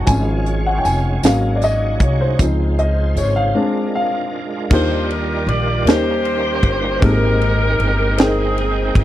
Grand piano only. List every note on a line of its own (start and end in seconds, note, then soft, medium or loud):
0.06 1.19 F3 medium
0.06 1.19 G#3 soft
0.06 1.19 C#4 medium
0.06 0.67 G#5 medium
0.66 0.78 F#5 medium
0.78 0.85 G5 medium
0.85 1.25 G#5 medium
1.23 2.35 F#3 medium
1.23 2.36 A#3 soft
1.23 2.36 C#4 medium
1.23 1.53 F5 medium
1.56 1.62 D5 medium
1.64 2.03 D#5 medium
2.02 2.21 C#5 medium
2.21 2.80 C5 medium
2.39 2.91 F3 medium
2.39 2.91 C4 soft
2.39 2.91 D#4 medium
2.79 3.18 D#5 medium
3.18 3.37 C#5 medium
3.36 3.94 F5 medium
3.54 4.06 G#3 medium
3.54 4.07 C4 medium
3.54 4.07 D4 medium
3.95 4.68 F5 medium
4.70 5.83 D#3 medium
4.70 5.43 A#3 medium
4.70 5.43 D4 medium
4.70 5.43 D#4 medium
4.70 5.43 F4 medium
4.70 5.44 G4 medium
5.86 6.99 D#3 medium
5.86 6.58 A#3 medium
5.86 6.58 C#4 medium
5.86 6.59 D#4 medium
5.86 6.59 G4 medium
5.86 6.59 A#4 medium
7.01 8.15 A#2 medium
7.01 7.75 G#3 medium
7.01 7.74 C4 medium
7.01 7.74 D#4 medium
7.01 7.75 G4 medium
7.01 7.10 A4 medium
7.11 7.79 A#4 medium
8.18 8.90 C4 medium
8.18 8.91 D#4 medium
8.18 8.91 G#4 medium
8.18 8.92 A#4 medium
8.18 8.91 G5 medium